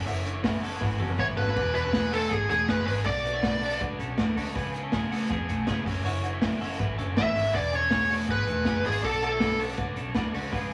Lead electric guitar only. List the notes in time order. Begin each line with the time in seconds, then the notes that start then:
1.20 C#5
1.37 B4
1.75 B4
2.13 A4
2.32 G#4
2.50 G#4
2.69 B4
2.87 B4
3.06 D5
7.18 E5
7.55 D5
7.75 C#5
8.31 B4
8.86 G#4
9.05 A4
9.24 A4